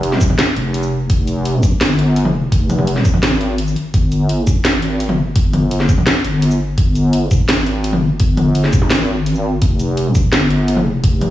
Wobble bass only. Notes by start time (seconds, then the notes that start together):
Already playing: F1
0.56 F1
1.10 F1
1.81 G1
2.30 F#1
2.52 F1
3.23 G#1
3.94 G1
4.65 G#1
5.14 G1
5.36 G1
5.85 F#1
6.24 G1
6.78 G1
7.49 G#1
7.98 G1
8.20 G1
8.91 G#1
9.62 F1
10.32 G1
10.81 F#1
11.04 F1